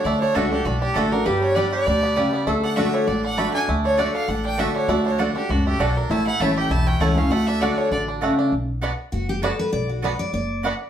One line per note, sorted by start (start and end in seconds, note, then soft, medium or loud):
0.00 0.22 D4 medium
0.00 1.34 F#4 medium
0.05 0.24 D2 medium
0.05 0.34 D3 medium
0.05 0.35 A3 medium
0.05 0.19 D5 medium
0.20 0.52 D4 medium
0.20 0.37 C#5 medium
0.35 0.61 C#2 medium
0.35 0.51 D3 medium
0.35 0.45 A3 medium
0.35 0.51 A3 medium
0.35 0.79 A3 medium
0.35 0.52 D4 loud
0.35 0.45 F#4 loud
0.35 0.50 F#4 loud
0.35 0.50 A4 medium
0.35 0.45 D5 loud
0.35 0.46 F#5 loud
0.51 0.66 D4 medium
0.51 0.66 D4 soft
0.51 0.65 F#4 medium
0.51 0.67 G4 medium
0.65 0.91 B1 medium
0.65 1.23 A2 medium
0.65 0.82 D4 medium
0.65 0.80 F#4 medium
0.80 1.12 D4 medium
0.80 0.96 G4 medium
0.94 1.21 A1 medium
0.94 1.12 D3 medium
0.94 1.05 A3 loud
0.94 1.26 A3 medium
0.94 1.12 A3 medium
0.94 1.12 D4 medium
0.94 1.05 F#4 medium
0.94 1.11 F#4 loud
0.94 1.13 A4 medium
0.94 1.06 D5 loud
0.94 1.06 F#5 medium
1.12 1.42 D4 medium
1.12 1.26 D4 medium
1.12 1.25 F#4 medium
1.12 1.27 A#4 medium
1.25 1.64 G1 medium
1.25 1.84 G2 medium
1.25 1.55 G3 medium
1.25 2.43 G4 loud
1.25 1.41 B4 medium
1.42 1.87 D4 medium
1.42 1.57 C#5 medium
1.55 1.85 G3 medium
1.55 2.00 G3 medium
1.55 1.66 B3 medium
1.55 1.85 B3 medium
1.55 1.86 D4 loud
1.55 1.66 G4 medium
1.55 1.86 G4 loud
1.55 1.72 D5 medium
1.55 1.66 D5 loud
1.55 1.66 G5 loud
1.72 2.14 G4 medium
1.72 2.43 D5 medium
1.86 2.25 D2 medium
1.86 2.16 B2 medium
1.86 2.63 D4 medium
2.03 2.32 B3 medium
2.16 2.46 C#3 medium
2.16 2.47 G3 medium
2.16 2.26 B3 medium
2.16 2.26 G4 medium
2.16 2.27 D5 medium
2.16 2.27 G5 loud
2.33 2.47 B3 medium
2.47 2.85 D2 medium
2.47 2.75 D3 medium
2.47 2.77 A3 medium
2.47 4.96 A4 loud
2.63 2.94 D4 medium
2.63 2.78 F#5 loud
2.76 3.06 D3 medium
2.76 2.87 A3 loud
2.76 3.38 A3 medium
2.76 3.06 A3 medium
2.76 3.06 D4 medium
2.76 2.87 F#4 medium
2.76 3.07 F#4 loud
2.76 2.87 D5 loud
2.76 2.95 E5 medium
2.76 2.87 F#5 loud
2.94 3.07 D4 medium
2.94 3.09 C#5 medium
3.07 3.46 A1 medium
3.07 3.65 A2 medium
3.07 3.25 D4 medium
3.07 3.24 D5 medium
3.24 3.55 D4 medium
3.24 3.39 F#5 loud
3.37 3.53 D3 medium
3.37 3.47 A3 medium
3.37 3.54 A3 medium
3.37 3.68 A3 medium
3.37 3.54 D4 medium
3.37 3.47 F#4 medium
3.37 3.52 F#4 medium
3.37 3.48 D5 medium
3.37 3.48 F#5 medium
3.37 3.53 B5 loud
3.53 3.85 D4 medium
3.53 3.68 D4 medium
3.53 3.67 F#4 medium
3.53 3.67 G#5 loud
3.68 4.06 D2 medium
3.68 3.96 D3 medium
3.68 3.99 A3 medium
3.85 4.14 D4 medium
3.85 4.00 C#5 medium
3.97 4.27 D3 medium
3.97 4.08 A3 medium
3.97 4.27 A3 medium
3.97 4.59 A3 medium
3.97 4.27 D4 loud
3.97 4.08 F#4 medium
3.97 4.28 F#4 loud
3.97 4.08 D5 loud
3.97 4.13 D5 medium
3.97 4.08 F#5 loud
4.14 4.28 D4 medium
4.14 4.30 F5 medium
4.28 4.66 A1 medium
4.28 4.86 A2 medium
4.28 4.44 D4 medium
4.28 4.45 F#5 medium
4.45 4.75 D4 medium
4.45 4.61 G5 loud
4.58 4.87 D3 medium
4.58 4.68 A3 medium
4.58 4.87 A3 medium
4.58 4.89 A3 medium
4.58 4.88 D4 medium
4.58 4.68 F#4 medium
4.58 4.88 F#4 loud
4.58 4.69 D5 medium
4.58 4.76 E5 medium
4.58 4.69 F#5 medium
4.76 5.05 D4 medium
4.76 4.90 C#5 medium
4.88 5.26 D2 medium
4.88 5.17 D3 medium
4.88 5.67 A3 medium
4.88 6.10 F#4 loud
4.88 5.05 D5 medium
5.06 5.18 D4 medium
5.06 5.21 C#5 medium
5.18 5.34 D3 medium
5.18 5.29 A3 medium
5.18 5.35 A3 medium
5.18 5.35 D4 medium
5.18 5.29 F#4 medium
5.18 5.34 F#4 medium
5.18 5.35 A4 medium
5.18 5.29 D5 medium
5.18 5.29 F#5 loud
5.35 5.49 D4 medium
5.35 5.50 D4 soft
5.35 5.49 F#4 medium
5.35 5.52 G4 medium
5.49 5.75 C#2 medium
5.49 5.78 F#2 medium
5.49 5.80 D4 medium
5.49 5.66 F#4 medium
5.67 6.11 A3 medium
5.67 5.82 G4 medium
5.79 6.05 B1 medium
5.79 6.09 B2 medium
5.79 5.89 A3 medium
5.79 5.96 D4 medium
5.79 5.89 F#4 medium
5.79 5.98 A4 medium
5.79 5.90 D5 loud
5.79 5.90 F#5 medium
5.97 6.11 D4 medium
5.97 6.13 A#4 medium
6.10 6.29 A1 medium
6.10 6.68 A2 medium
6.10 6.40 A3 medium
6.10 7.35 E4 medium
6.10 6.26 A5 medium
6.27 6.68 E4 medium
6.27 6.42 F#5 loud
6.40 6.66 A1 medium
6.40 6.69 E3 medium
6.40 6.50 A3 loud
6.40 6.69 A3 medium
6.40 6.84 A3 medium
6.40 6.70 C#4 medium
6.40 6.50 E4 medium
6.40 6.70 E4 medium
6.40 6.50 C#5 loud
6.40 6.57 E5 medium
6.40 6.51 A5 loud
6.57 6.99 G4 medium
6.57 6.72 G5 medium
6.70 6.96 B1 medium
6.70 7.29 E2 medium
6.70 7.14 E4 medium
6.70 6.88 A5 medium
6.87 7.16 C#4 medium
6.87 7.02 G5 loud
7.00 7.26 C#2 medium
7.00 7.16 E3 medium
7.00 7.10 A3 medium
7.00 7.30 A3 medium
7.00 7.17 A3 medium
7.00 7.17 C#4 loud
7.00 7.11 E4 medium
7.00 7.16 E4 medium
7.00 7.11 C#5 medium
7.00 7.19 F#5 medium
7.00 7.11 A5 medium
7.17 7.31 C#4 medium
7.17 7.32 C#4 soft
7.17 7.31 E4 medium
7.17 7.33 F5 medium
7.30 7.68 D2 medium
7.30 7.60 D3 medium
7.30 7.61 A3 medium
7.30 8.34 F#4 medium
7.30 7.49 F#5 loud
7.47 7.77 D4 medium
7.47 7.63 E5 loud
7.61 7.90 D3 medium
7.61 7.71 A3 medium
7.61 7.90 A3 medium
7.61 8.05 A3 medium
7.61 7.91 D4 medium
7.61 7.71 F#4 medium
7.61 7.91 F#4 loud
7.61 7.79 D5 medium
7.61 7.71 D5 loud
7.61 7.72 F#5 loud
7.77 7.91 D4 medium
7.77 7.91 C#5 medium
7.91 8.29 A1 medium
7.91 8.21 D3 medium
7.91 8.07 D4 medium
7.91 8.02 D5 medium
8.08 8.38 D4 medium
8.21 8.51 C#3 medium
8.21 8.31 A3 medium
8.21 8.53 A3 medium
8.21 8.32 F#4 medium
8.21 8.32 D5 medium
8.21 8.32 F#5 loud
8.39 8.52 D4 medium
8.52 8.90 B1 medium
8.81 8.92 B3 medium
8.81 8.90 B3 medium
8.81 8.90 D4 medium
8.81 8.92 F#4 loud
8.81 8.92 D5 medium
8.81 8.92 F#5 loud
9.12 9.51 F#1 medium
9.12 9.28 F#4 medium
9.29 9.42 G4 medium
9.42 9.52 B3 medium
9.42 9.51 B3 medium
9.42 9.51 D4 medium
9.42 9.53 F#4 medium
9.42 9.59 A4 medium
9.42 9.53 D5 medium
9.42 9.53 F#5 medium
9.59 9.72 B4 loud
9.72 10.11 B1 medium
9.72 9.89 D5 medium
9.89 10.03 F#4 medium
10.02 10.13 B3 medium
10.02 10.11 B3 medium
10.02 10.11 D4 medium
10.02 10.13 F#4 medium
10.02 10.19 B4 medium
10.02 10.13 D5 medium
10.02 10.14 F#5 loud
10.19 10.32 D5 medium
10.33 10.71 F#1 medium
10.33 10.90 D5 medium
10.63 10.73 B3 medium
10.63 10.72 B3 medium
10.63 10.72 D4 medium
10.63 10.74 F#4 medium
10.63 10.74 D5 loud
10.63 10.74 F#5 loud